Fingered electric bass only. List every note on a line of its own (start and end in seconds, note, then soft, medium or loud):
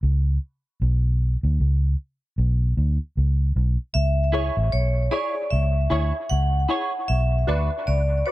0.03 0.37 C#2 medium
0.81 1.35 B1 loud
1.43 1.58 D2 medium
1.60 1.94 C#2 medium
2.38 2.72 B1 loud
2.77 2.97 D2 medium
3.17 3.51 C#2 medium
3.56 3.76 B1 loud
3.95 4.49 C#2 loud
4.57 4.71 A1 medium
4.73 5.08 B1 medium
5.53 5.87 C#2 loud
5.91 6.11 D2 medium
6.31 6.65 C#2 medium
7.10 7.44 B1 loud
7.48 7.68 D2 medium
7.88 8.22 C#2 medium